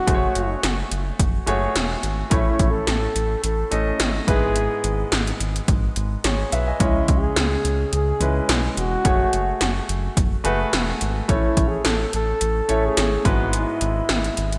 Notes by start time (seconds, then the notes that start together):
Already playing: F#4
0.07 F#1 A3 F#4 G#4 C5, kick, closed hi-hat
0.14 C#5
0.35 F#1, closed hi-hat
0.63 F#1, snare, closed hi-hat
0.91 F#1, closed hi-hat
1.19 F#1, kick, closed hi-hat
1.46 F#1 A3 F#4 G#4 C#5, closed hi-hat
1.75 E1, snare, closed hi-hat
2.03 G#1, closed hi-hat
2.30 A1 A2 A3 C#4 E4 C#5, kick, closed hi-hat
2.59 A1, kick, closed hi-hat
2.70 A4
2.87 A1, snare, closed hi-hat
3.16 A1, closed hi-hat
3.44 A1 A4, closed hi-hat
3.71 A1 A3 C#4 E4 D#5, closed hi-hat
4.00 G#1, snare, closed hi-hat
4.27 G#1 G#2 G#3 B3 E4 G#4 B4, kick, closed hi-hat
4.56 closed hi-hat
4.84 G#1, closed hi-hat
5.12 G#1, snare, closed hi-hat
5.27 closed hi-hat
5.40 G#1, closed hi-hat
5.56 closed hi-hat
5.68 G#1, kick, closed hi-hat
5.96 G#1, closed hi-hat
6.24 G#1 G#4 C#5, snare, closed hi-hat
6.52 B1 B4 E5, closed hi-hat
6.68 D#5 G#5
6.80 C#2 C#3 G#3 C#4 E4 C#5, kick, closed hi-hat
7.08 C#2, kick, closed hi-hat
7.18 G#4
7.36 C#2, snare, closed hi-hat
7.65 C#2, closed hi-hat
7.93 C#2 G#4, closed hi-hat
8.20 C#2 G#3 C#4 E4 B4, closed hi-hat
8.49 B1, snare, closed hi-hat
8.77 E1 F#4, closed hi-hat
9.04 F#1 A3 F#4 G#4 C#5, kick, closed hi-hat
9.33 F#1, closed hi-hat
9.61 F#1, snare, closed hi-hat
9.89 F#1, closed hi-hat
10.17 F#1, kick, closed hi-hat
10.44 F#1 A3 F#4 G#4 B4, closed hi-hat
10.73 E1, snare, closed hi-hat
11.01 G#1, closed hi-hat
11.28 A1 A2 A3 C#4 E4 C#5, kick, closed hi-hat
11.57 A1, kick, closed hi-hat
11.68 G#4
11.85 A1 A4, snare, closed hi-hat
12.13 A1 A4, closed hi-hat
12.41 A1, closed hi-hat
12.68 A1 A3 C#4 E4 C#5, closed hi-hat
12.86 G#4
12.97 G#1, snare, closed hi-hat
13.25 G#1 G#2 G#3 B3 E4 F#4 B4, kick, closed hi-hat
13.53 E4, closed hi-hat
13.81 G#1, closed hi-hat
14.09 G#1, snare, closed hi-hat
14.24 closed hi-hat
14.37 G#1, closed hi-hat
14.52 closed hi-hat